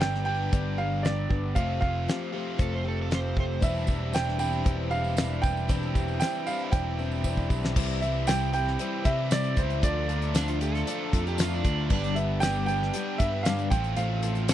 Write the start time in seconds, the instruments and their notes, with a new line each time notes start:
Already playing: picked electric bass G1, overdriven electric guitar G2 D3 G3 B3 D4 G4
0.00 twelve-string acoustic guitar G3 B3 D4 G4, grand piano G5, snare, closed hi-hat
0.15 snare
0.25 overdriven electric guitar D3, twelve-string acoustic guitar G3 B3 D4 G4, grand piano G5
0.29 overdriven electric guitar G2
0.52 picked electric bass G1, twelve-string acoustic guitar G2 D3 G3 B3 D4 G4, kick, closed hi-hat
0.78 twelve-string acoustic guitar G3 B3 D4 G4, grand piano F5
1.03 twelve-string acoustic guitar G3 B3 D4 G4, grand piano D5, snare, closed hi-hat
1.29 picked electric bass G1, twelve-string acoustic guitar G3 B3 D4 G4, kick
1.55 picked electric bass F1, twelve-string acoustic guitar F2 C3 F3 A3 C4 G4, overdriven electric guitar F4, grand piano F5, kick, closed hi-hat
1.81 picked electric bass F1, twelve-string acoustic guitar F3 A3 C4 G4, grand piano F5, kick
2.06 twelve-string acoustic guitar F3 A3 C4 G4, snare, closed hi-hat
2.32 overdriven electric guitar F2 C3 F4, twelve-string acoustic guitar F3 A3 C4 G4
2.58 picked electric bass F1, twelve-string acoustic guitar F2 C3 F3 A3 C4 G4, kick, closed hi-hat
2.62 electric slide guitar A4
2.75 electric slide guitar C5
2.84 twelve-string acoustic guitar F3 A3 C4 G4
2.88 electric slide guitar A4
3.02 electric slide guitar A4
3.09 twelve-string acoustic guitar F3 A3 C4 G4, snare, closed hi-hat
3.14 electric slide guitar C5
3.35 picked electric bass F1, twelve-string acoustic guitar F3 A3 C4 G4, kick
3.40 electric slide guitar C5
3.60 picked electric bass E1, twelve-string acoustic guitar E3 C4 D4 G4, harmonium E3 C4 D4, overdriven electric guitar G3, grand piano E5, kick, closed hi-hat, tambourine
3.65 overdriven electric guitar E4
3.75 tambourine
3.86 picked electric bass E1, twelve-string acoustic guitar C4 D4 G4, kick, tambourine
4.12 twelve-string acoustic guitar E3 C4 D4 G4, grand piano G5, snare, closed hi-hat, tambourine
4.28 snare
4.38 overdriven electric guitar G3 E4, twelve-string acoustic guitar C4 D4 G4, grand piano G5, tambourine
4.42 overdriven electric guitar E3
4.53 tambourine
4.64 picked electric bass E1, twelve-string acoustic guitar E3 C4 D4 G4, kick, closed hi-hat
4.90 twelve-string acoustic guitar C4 D4 G4, grand piano F5, tambourine
5.04 tambourine
5.16 twelve-string acoustic guitar E3 C4 D4 G4, snare, closed hi-hat, tambourine
5.42 picked electric bass E1, twelve-string acoustic guitar C4 D4 G4, grand piano G5, kick, tambourine
5.57 tambourine
5.68 picked electric bass E1, twelve-string acoustic guitar E3 C4 D4 G4, overdriven electric guitar G3 E4, kick, closed hi-hat, tambourine
5.83 tambourine
5.95 picked electric bass E1, twelve-string acoustic guitar C4 D4 G4, kick, tambourine
6.08 tambourine
6.20 twelve-string acoustic guitar E3 C4 D4 G4, grand piano G5, snare, closed hi-hat, tambourine
6.35 tambourine
6.46 overdriven electric guitar E3 G3 E4, twelve-string acoustic guitar C4 D4 G4, grand piano F5, tambourine
6.64 grand piano F5
6.71 picked electric bass E1, twelve-string acoustic guitar E3 C4 D4 G4, grand piano G5, kick, closed hi-hat, tambourine
6.97 twelve-string acoustic guitar C4 D4 G4, tambourine
7.11 tambourine
7.24 twelve-string acoustic guitar E3 C4 D4 G4, kick, tambourine
7.37 kick, tambourine
7.50 picked electric bass B1, twelve-string acoustic guitar C4 D4 G4, kick, tambourine
7.63 snare, tambourine
7.75 picked electric bass C2, twelve-string acoustic guitar C3 G3 C4 E4 G4, overdriven electric guitar E3, harmonium G3 C4 E4, kick, crash
7.90 closed hi-hat
8.01 overdriven electric guitar G3, twelve-string acoustic guitar C4 E4 G4, grand piano E5, closed hi-hat
8.27 twelve-string acoustic guitar C3 G3 C4 E4 G4, overdriven electric guitar E3, grand piano G5, snare, closed hi-hat, tambourine
8.52 overdriven electric guitar G3, twelve-string acoustic guitar C4 E4 G4, grand piano G5, closed hi-hat
8.67 snare
8.79 overdriven electric guitar E3, twelve-string acoustic guitar G3 C4 E4 G4, closed hi-hat
9.04 picked electric bass C3, overdriven electric guitar E3 G3, twelve-string acoustic guitar C4 E4 G4, grand piano E5, kick, closed hi-hat
9.08 overdriven electric guitar C3
9.30 twelve-string acoustic guitar C3 G3 C4 E4 G4, overdriven electric guitar E3, grand piano D5, snare, closed hi-hat, tambourine
9.44 closed hi-hat
9.56 picked electric bass C#2, twelve-string acoustic guitar C4 E4 G4, grand piano C5, kick, closed hi-hat
9.60 overdriven electric guitar G3
9.70 closed hi-hat
9.81 picked electric bass D2, twelve-string acoustic guitar D3 F3 A3 D4 F4, harmonium A3 D4 F4, grand piano D5, kick, closed hi-hat
10.08 twelve-string acoustic guitar A3 D4 F4, closed hi-hat
10.22 closed hi-hat
10.34 twelve-string acoustic guitar D3 F3 A3 D4 F4, electric slide guitar D4, snare, closed hi-hat, tambourine
10.48 electric slide guitar F4, closed hi-hat
10.59 twelve-string acoustic guitar A3 D4 F4, electric slide guitar G4, closed hi-hat
10.74 electric slide guitar A4, snare, closed hi-hat
10.86 overdriven electric guitar D3, twelve-string acoustic guitar F3 A3 D4 F4, closed hi-hat
11.12 picked electric bass F2, overdriven electric guitar D3, twelve-string acoustic guitar A3 D4 F4, kick, closed hi-hat
11.27 electric slide guitar G4, closed hi-hat
11.37 twelve-string acoustic guitar D3 F3 A3 D4 F4, electric slide guitar F4, snare, closed hi-hat, tambourine
11.54 electric slide guitar D4
11.64 picked electric bass D2, twelve-string acoustic guitar A3 D4 F4, kick, closed hi-hat
11.90 picked electric bass G1, twelve-string acoustic guitar G2 D3 G3 B3 D4 G4, harmonium B3 D4 G4, electric slide guitar D4, kick, crash
12.04 closed hi-hat
12.15 twelve-string acoustic guitar G3 B3 D4 G4, grand piano E5, closed hi-hat
12.40 twelve-string acoustic guitar G2 D3 G3 B3 D4 G4, grand piano G5, snare, closed hi-hat, tambourine
12.66 twelve-string acoustic guitar G3 B3 D4 G4, grand piano G5, closed hi-hat
12.82 snare
12.93 twelve-string acoustic guitar G3 B3 D4 G4, closed hi-hat
13.18 picked electric bass G2, overdriven electric guitar D3, twelve-string acoustic guitar G3 B3 D4 G4, grand piano E5, kick, closed hi-hat
13.23 overdriven electric guitar G2
13.43 twelve-string acoustic guitar G2 D3 G3 B3 D4 G4, grand piano F5, snare, closed hi-hat, tambourine
13.59 closed hi-hat
13.70 picked electric bass A1, overdriven electric guitar A2 F3 A3, harmonium C4 F4 A4, twelve-string acoustic guitar C4 F4 A4, grand piano G5, kick, closed hi-hat
13.84 closed hi-hat
13.96 picked electric bass A1, overdriven electric guitar A2 F3, twelve-string acoustic guitar A3 C4 F4 A4, grand piano F5, closed hi-hat
14.23 overdriven electric guitar A3, twelve-string acoustic guitar C4 F4 A4, closed hi-hat
14.35 closed hi-hat
14.48 overdriven electric guitar A2 F3, twelve-string acoustic guitar A3 C4 F4 A4, snare, closed hi-hat, tambourine